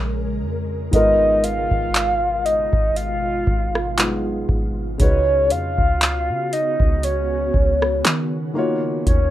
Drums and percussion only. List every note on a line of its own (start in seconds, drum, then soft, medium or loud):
0.93 kick loud
0.93 closed hi-hat medium
1.44 closed hi-hat medium
1.71 kick medium
1.95 clap loud
1.95 closed hi-hat medium
2.46 closed hi-hat medium
2.73 kick loud
2.96 closed hi-hat medium
3.47 kick loud
3.75 cross-stick medium
3.98 clap loud
3.98 closed hi-hat medium
4.49 kick medium
5.00 kick loud
5.00 closed hi-hat medium
5.50 closed hi-hat medium
5.78 kick medium
6.02 clap loud
6.02 closed hi-hat medium
6.53 closed hi-hat medium
6.80 kick loud
7.03 closed hi-hat medium
7.54 kick loud
7.82 cross-stick medium
8.05 clap loud
8.05 closed hi-hat medium
9.07 kick loud
9.07 closed hi-hat medium